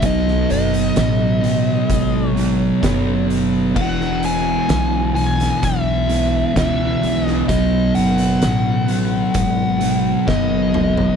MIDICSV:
0, 0, Header, 1, 6, 480
1, 0, Start_track
1, 0, Tempo, 930233
1, 17, Time_signature, 4, 2, 24, 8
1, 5759, End_track
2, 0, Start_track
2, 0, Title_t, "Lead electric guitar"
2, 0, Program_c, 0, 29
2, 29, Note_on_c, 0, 75, 91
2, 261, Note_off_c, 0, 75, 0
2, 267, Note_on_c, 0, 75, 79
2, 1170, Note_off_c, 0, 75, 0
2, 1170, Note_on_c, 0, 73, 79
2, 1682, Note_off_c, 0, 73, 0
2, 1941, Note_on_c, 0, 78, 118
2, 2187, Note_off_c, 0, 78, 0
2, 2193, Note_on_c, 0, 80, 117
2, 2652, Note_off_c, 0, 80, 0
2, 2658, Note_on_c, 0, 80, 99
2, 2906, Note_off_c, 0, 80, 0
2, 2912, Note_on_c, 0, 76, 100
2, 3387, Note_off_c, 0, 76, 0
2, 3393, Note_on_c, 0, 76, 91
2, 3723, Note_off_c, 0, 76, 0
2, 3723, Note_on_c, 0, 75, 91
2, 3860, Note_off_c, 0, 75, 0
2, 3862, Note_on_c, 0, 75, 96
2, 4101, Note_on_c, 0, 78, 107
2, 4108, Note_off_c, 0, 75, 0
2, 5303, Note_on_c, 0, 75, 88
2, 5337, Note_off_c, 0, 78, 0
2, 5759, Note_off_c, 0, 75, 0
2, 5759, End_track
3, 0, Start_track
3, 0, Title_t, "Distorted electric guitar"
3, 0, Program_c, 1, 30
3, 9, Note_on_c, 1, 47, 99
3, 20, Note_on_c, 1, 54, 108
3, 30, Note_on_c, 1, 59, 106
3, 1199, Note_off_c, 1, 47, 0
3, 1205, Note_off_c, 1, 54, 0
3, 1210, Note_off_c, 1, 59, 0
3, 1212, Note_on_c, 1, 59, 97
3, 1221, Note_on_c, 1, 54, 90
3, 1233, Note_on_c, 1, 47, 80
3, 1445, Note_off_c, 1, 54, 0
3, 1449, Note_off_c, 1, 47, 0
3, 1455, Note_on_c, 1, 47, 83
3, 1467, Note_on_c, 1, 54, 89
3, 1471, Note_off_c, 1, 59, 0
3, 1473, Note_on_c, 1, 59, 88
3, 1922, Note_off_c, 1, 47, 0
3, 1928, Note_off_c, 1, 54, 0
3, 1939, Note_on_c, 1, 40, 101
3, 1950, Note_on_c, 1, 47, 89
3, 1954, Note_off_c, 1, 59, 0
3, 1956, Note_on_c, 1, 52, 107
3, 3125, Note_off_c, 1, 40, 0
3, 3129, Note_off_c, 1, 52, 0
3, 3130, Note_off_c, 1, 47, 0
3, 3135, Note_on_c, 1, 52, 95
3, 3146, Note_on_c, 1, 47, 79
3, 3153, Note_on_c, 1, 40, 77
3, 3363, Note_off_c, 1, 52, 0
3, 3368, Note_off_c, 1, 47, 0
3, 3371, Note_off_c, 1, 40, 0
3, 3379, Note_on_c, 1, 40, 71
3, 3390, Note_on_c, 1, 47, 78
3, 3397, Note_on_c, 1, 52, 93
3, 3845, Note_off_c, 1, 40, 0
3, 3850, Note_off_c, 1, 47, 0
3, 3853, Note_off_c, 1, 52, 0
3, 3862, Note_on_c, 1, 47, 96
3, 3870, Note_on_c, 1, 54, 98
3, 3880, Note_on_c, 1, 59, 107
3, 5047, Note_off_c, 1, 47, 0
3, 5051, Note_off_c, 1, 54, 0
3, 5056, Note_off_c, 1, 59, 0
3, 5058, Note_on_c, 1, 59, 82
3, 5067, Note_on_c, 1, 54, 80
3, 5076, Note_on_c, 1, 47, 68
3, 5289, Note_off_c, 1, 47, 0
3, 5289, Note_off_c, 1, 54, 0
3, 5295, Note_on_c, 1, 47, 79
3, 5303, Note_on_c, 1, 54, 82
3, 5309, Note_off_c, 1, 59, 0
3, 5311, Note_on_c, 1, 59, 87
3, 5759, Note_off_c, 1, 47, 0
3, 5759, Note_off_c, 1, 54, 0
3, 5759, Note_off_c, 1, 59, 0
3, 5759, End_track
4, 0, Start_track
4, 0, Title_t, "Distorted electric guitar"
4, 0, Program_c, 2, 30
4, 734, Note_on_c, 2, 59, 88
4, 739, Note_on_c, 2, 54, 87
4, 747, Note_on_c, 2, 47, 72
4, 1444, Note_off_c, 2, 54, 0
4, 1448, Note_off_c, 2, 47, 0
4, 1467, Note_off_c, 2, 59, 0
4, 2656, Note_on_c, 2, 52, 84
4, 2667, Note_on_c, 2, 47, 85
4, 2672, Note_on_c, 2, 40, 67
4, 3363, Note_off_c, 2, 52, 0
4, 3369, Note_off_c, 2, 47, 0
4, 3371, Note_off_c, 2, 40, 0
4, 4580, Note_on_c, 2, 59, 85
4, 4589, Note_on_c, 2, 54, 86
4, 4594, Note_on_c, 2, 47, 74
4, 5290, Note_off_c, 2, 54, 0
4, 5293, Note_off_c, 2, 47, 0
4, 5311, Note_off_c, 2, 59, 0
4, 5759, End_track
5, 0, Start_track
5, 0, Title_t, "Upright bass"
5, 0, Program_c, 3, 32
5, 13, Note_on_c, 3, 35, 103
5, 219, Note_off_c, 3, 35, 0
5, 253, Note_on_c, 3, 30, 82
5, 459, Note_off_c, 3, 30, 0
5, 496, Note_on_c, 3, 33, 96
5, 905, Note_off_c, 3, 33, 0
5, 979, Note_on_c, 3, 32, 97
5, 1387, Note_off_c, 3, 32, 0
5, 1459, Note_on_c, 3, 30, 93
5, 1940, Note_off_c, 3, 30, 0
5, 1940, Note_on_c, 3, 28, 99
5, 2348, Note_off_c, 3, 28, 0
5, 2417, Note_on_c, 3, 35, 104
5, 2826, Note_off_c, 3, 35, 0
5, 2905, Note_on_c, 3, 35, 85
5, 3311, Note_off_c, 3, 35, 0
5, 3384, Note_on_c, 3, 37, 89
5, 3586, Note_off_c, 3, 37, 0
5, 3619, Note_on_c, 3, 35, 84
5, 3823, Note_off_c, 3, 35, 0
5, 3866, Note_on_c, 3, 35, 93
5, 4067, Note_off_c, 3, 35, 0
5, 4102, Note_on_c, 3, 30, 90
5, 4305, Note_off_c, 3, 30, 0
5, 4340, Note_on_c, 3, 33, 90
5, 4749, Note_off_c, 3, 33, 0
5, 4824, Note_on_c, 3, 32, 99
5, 5231, Note_off_c, 3, 32, 0
5, 5305, Note_on_c, 3, 30, 99
5, 5712, Note_off_c, 3, 30, 0
5, 5759, End_track
6, 0, Start_track
6, 0, Title_t, "Drums"
6, 12, Note_on_c, 9, 42, 114
6, 15, Note_on_c, 9, 36, 122
6, 63, Note_off_c, 9, 42, 0
6, 66, Note_off_c, 9, 36, 0
6, 143, Note_on_c, 9, 38, 34
6, 195, Note_off_c, 9, 38, 0
6, 258, Note_on_c, 9, 42, 87
6, 310, Note_off_c, 9, 42, 0
6, 380, Note_on_c, 9, 42, 52
6, 431, Note_off_c, 9, 42, 0
6, 496, Note_on_c, 9, 42, 106
6, 501, Note_on_c, 9, 38, 111
6, 547, Note_off_c, 9, 42, 0
6, 553, Note_off_c, 9, 38, 0
6, 741, Note_on_c, 9, 42, 76
6, 793, Note_off_c, 9, 42, 0
6, 979, Note_on_c, 9, 36, 115
6, 981, Note_on_c, 9, 42, 113
6, 1030, Note_off_c, 9, 36, 0
6, 1032, Note_off_c, 9, 42, 0
6, 1223, Note_on_c, 9, 42, 75
6, 1275, Note_off_c, 9, 42, 0
6, 1460, Note_on_c, 9, 36, 97
6, 1462, Note_on_c, 9, 42, 105
6, 1467, Note_on_c, 9, 38, 116
6, 1511, Note_off_c, 9, 36, 0
6, 1514, Note_off_c, 9, 42, 0
6, 1519, Note_off_c, 9, 38, 0
6, 1704, Note_on_c, 9, 42, 67
6, 1756, Note_off_c, 9, 42, 0
6, 1941, Note_on_c, 9, 36, 112
6, 1941, Note_on_c, 9, 49, 106
6, 1992, Note_off_c, 9, 49, 0
6, 1993, Note_off_c, 9, 36, 0
6, 2069, Note_on_c, 9, 38, 34
6, 2120, Note_off_c, 9, 38, 0
6, 2181, Note_on_c, 9, 42, 69
6, 2233, Note_off_c, 9, 42, 0
6, 2421, Note_on_c, 9, 42, 95
6, 2426, Note_on_c, 9, 38, 111
6, 2472, Note_off_c, 9, 42, 0
6, 2477, Note_off_c, 9, 38, 0
6, 2664, Note_on_c, 9, 42, 71
6, 2716, Note_off_c, 9, 42, 0
6, 2786, Note_on_c, 9, 42, 49
6, 2791, Note_on_c, 9, 38, 34
6, 2837, Note_off_c, 9, 42, 0
6, 2842, Note_off_c, 9, 38, 0
6, 2904, Note_on_c, 9, 42, 101
6, 2905, Note_on_c, 9, 36, 111
6, 2956, Note_off_c, 9, 42, 0
6, 2957, Note_off_c, 9, 36, 0
6, 3144, Note_on_c, 9, 42, 77
6, 3196, Note_off_c, 9, 42, 0
6, 3386, Note_on_c, 9, 36, 89
6, 3387, Note_on_c, 9, 42, 102
6, 3392, Note_on_c, 9, 38, 113
6, 3438, Note_off_c, 9, 36, 0
6, 3438, Note_off_c, 9, 42, 0
6, 3443, Note_off_c, 9, 38, 0
6, 3628, Note_on_c, 9, 42, 74
6, 3680, Note_off_c, 9, 42, 0
6, 3753, Note_on_c, 9, 38, 36
6, 3804, Note_off_c, 9, 38, 0
6, 3866, Note_on_c, 9, 36, 122
6, 3866, Note_on_c, 9, 42, 105
6, 3917, Note_off_c, 9, 36, 0
6, 3917, Note_off_c, 9, 42, 0
6, 4102, Note_on_c, 9, 42, 81
6, 4154, Note_off_c, 9, 42, 0
6, 4221, Note_on_c, 9, 42, 57
6, 4272, Note_off_c, 9, 42, 0
6, 4343, Note_on_c, 9, 42, 109
6, 4348, Note_on_c, 9, 38, 118
6, 4395, Note_off_c, 9, 42, 0
6, 4400, Note_off_c, 9, 38, 0
6, 4583, Note_on_c, 9, 42, 84
6, 4635, Note_off_c, 9, 42, 0
6, 4821, Note_on_c, 9, 42, 116
6, 4824, Note_on_c, 9, 36, 116
6, 4872, Note_off_c, 9, 42, 0
6, 4876, Note_off_c, 9, 36, 0
6, 5061, Note_on_c, 9, 42, 80
6, 5112, Note_off_c, 9, 42, 0
6, 5303, Note_on_c, 9, 36, 96
6, 5308, Note_on_c, 9, 38, 69
6, 5355, Note_off_c, 9, 36, 0
6, 5359, Note_off_c, 9, 38, 0
6, 5543, Note_on_c, 9, 45, 93
6, 5595, Note_off_c, 9, 45, 0
6, 5663, Note_on_c, 9, 43, 94
6, 5714, Note_off_c, 9, 43, 0
6, 5759, End_track
0, 0, End_of_file